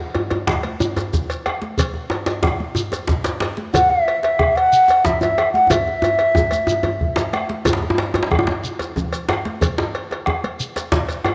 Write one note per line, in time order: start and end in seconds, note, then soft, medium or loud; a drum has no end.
0.14 cowbell soft
0.14 djembe tone medium
0.30 bombo rim soft
0.30 cowbell soft
0.30 djembe slap medium
0.30 djembe tone medium
0.47 bombo rim loud
0.47 bombo low loud
0.47 djembe slap medium
0.47 djembe tone medium
0.47 djembe bass medium
0.47 low conga medium
0.63 cowbell soft
0.63 high conga medium
0.80 djembe tone medium
0.80 shekere medium
0.96 cowbell soft
0.96 djembe slap medium
0.96 djembe tone medium
0.96 shekere soft
1.13 bombo low medium
1.13 djembe slap soft
1.13 djembe bass medium
1.13 low conga medium
1.13 shekere soft
1.30 cowbell medium
1.30 djembe slap soft
1.30 shekere soft
1.46 bombo rim medium
1.46 cowbell medium
1.46 djembe tone medium
1.46 high conga soft
1.62 djembe slap medium
1.62 high conga soft
1.78 bombo low medium
1.78 cowbell medium
1.78 djembe bass medium
1.78 low conga medium
1.78 shekere medium
1.94 djembe tone medium
2.10 cowbell medium
2.10 djembe slap medium
2.26 bombo rim soft
2.26 cowbell soft
2.26 djembe slap medium
2.43 bombo rim loud
2.43 bombo low medium
2.43 djembe slap medium
2.43 djembe tone medium
2.43 djembe bass medium
2.43 low conga medium
2.60 high conga soft
2.75 djembe tone medium
2.75 shekere medium
2.92 cowbell soft
2.92 djembe slap medium
2.92 djembe tone medium
2.92 shekere soft
3.08 bombo low medium
3.08 djembe slap medium
3.08 djembe slap soft
3.08 djembe bass medium
3.08 low conga medium
3.08 shekere soft
3.24 cowbell soft
3.24 djembe slap medium
3.24 djembe slap soft
3.24 shekere soft
3.40 cowbell soft
3.40 djembe slap medium
3.40 djembe tone medium
3.40 high conga soft
3.57 djembe slap medium
3.57 high conga soft
3.74 3.92 F#5 loud
3.74 bombo low medium
3.74 cowbell medium
3.74 djembe tone medium
3.74 low conga medium
3.74 djembe bass medium
3.74 shekere medium
3.90 4.22 E5 medium
3.90 djembe tone medium
4.08 cowbell soft
4.23 4.58 E5 medium
4.23 bombo rim soft
4.23 cowbell soft
4.23 djembe slap medium
4.39 bombo rim loud
4.39 bombo low loud
4.39 djembe tone medium
4.39 low conga medium
4.39 djembe bass medium
4.56 5.07 F#5 loud
4.56 cowbell soft
4.73 shekere soft
4.88 cowbell medium
4.88 djembe slap medium
4.88 djembe tone medium
4.88 shekere soft
5.05 5.22 E5 medium
5.05 bombo low medium
5.05 djembe slap medium
5.05 djembe slap soft
5.05 djembe bass medium
5.05 low conga medium
5.05 shekere soft
5.21 5.52 E5 medium
5.21 cowbell medium
5.21 djembe tone medium
5.21 shekere soft
5.38 bombo rim medium
5.38 cowbell medium
5.38 high conga soft
5.38 djembe tone medium
5.53 5.72 F#5 medium
5.53 djembe slap medium
5.53 high conga medium
5.70 7.34 E5 medium
5.70 bombo low medium
5.70 cowbell medium
5.70 djembe tone loud
5.70 low conga medium
5.70 djembe bass medium
5.70 shekere medium
5.87 djembe slap soft
5.87 high conga soft
5.87 djembe tone medium
6.02 bombo rim soft
6.02 cowbell medium
6.02 djembe slap soft
6.02 djembe tone medium
6.02 shekere soft
6.19 cowbell soft
6.19 djembe slap soft
6.35 bombo low loud
6.35 djembe tone loud
6.35 high conga soft
6.35 low conga medium
6.35 shekere soft
6.37 djembe tone medium
6.37 djembe bass medium
6.51 bombo rim soft
6.51 cowbell soft
6.51 high conga medium
6.51 shekere soft
6.67 bombo rim soft
6.67 djembe tone medium
6.67 shekere soft
6.83 cowbell soft
6.83 djembe tone medium
6.83 djembe tone soft
6.83 low conga soft
7.01 bombo low loud
7.01 djembe bass soft
7.01 low conga soft
7.16 cowbell soft
7.16 djembe slap medium
7.16 low conga medium
7.16 djembe bass soft
7.16 shekere soft
7.33 bombo rim medium
7.33 cowbell soft
7.33 djembe slap medium
7.33 high conga medium
7.49 djembe slap medium
7.49 high conga medium
7.65 bombo low loud
7.65 cowbell medium
7.65 djembe tone loud
7.65 low conga medium
7.65 djembe bass medium
7.65 shekere medium
7.73 djembe slap medium
7.82 djembe tone medium
7.90 djembe tone loud
7.98 cowbell medium
7.98 djembe slap medium
8.14 bombo rim soft
8.14 cowbell medium
8.14 djembe slap medium
8.14 djembe tone loud
8.23 djembe slap medium
8.31 bombo rim loud
8.31 bombo low loud
8.31 low conga medium
8.31 djembe bass medium
8.39 djembe tone loud
8.47 djembe slap medium
8.47 high conga medium
8.64 shekere soft
8.79 cowbell medium
8.79 djembe slap medium
8.79 djembe tone medium
8.79 shekere soft
8.96 bombo low medium
8.96 djembe slap soft
8.96 djembe bass medium
8.96 low conga medium
8.96 shekere soft
9.13 cowbell medium
9.13 djembe slap soft
9.13 shekere soft
9.29 bombo rim loud
9.29 cowbell medium
9.29 djembe slap medium
9.29 high conga soft
9.29 djembe tone medium
9.45 djembe slap medium
9.45 high conga medium
9.61 bombo low medium
9.61 cowbell medium
9.61 djembe bass medium
9.61 low conga medium
9.61 shekere medium
9.78 djembe slap medium
9.78 djembe tone medium
9.95 cowbell medium
10.11 bombo rim soft
10.11 cowbell medium
10.11 djembe slap medium
10.26 bombo rim loud
10.26 djembe tone medium
10.26 low conga medium
10.26 djembe bass medium
10.44 cowbell soft
10.44 high conga medium
10.60 shekere medium
10.76 cowbell soft
10.76 djembe slap medium
10.76 djembe tone medium
10.76 shekere soft
10.92 bombo low loud
10.92 djembe slap loud
10.92 djembe slap soft
10.92 djembe bass medium
10.92 low conga medium
10.92 shekere soft
11.09 cowbell medium
11.09 djembe slap soft
11.09 shekere soft
11.25 bombo rim loud
11.25 cowbell medium
11.25 djembe tone medium
11.25 high conga soft